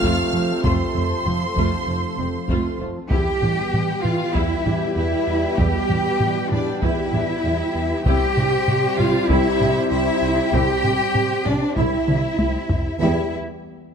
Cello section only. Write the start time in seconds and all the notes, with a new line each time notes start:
0.03 F2
0.33 F2
0.64 F2
0.95 F2
1.26 F2
1.56 F2
1.88 F2
2.18 F2
2.49 F2
2.79 F2
3.10 G4
4.03 F4
4.33 E4
4.95 E4
5.57 G4
6.50 D4
6.81 E4
8.06 G4
8.98 F4
9.29 E4
9.91 E4
10.53 G4
11.46 D4
11.77 E4
13.00 E4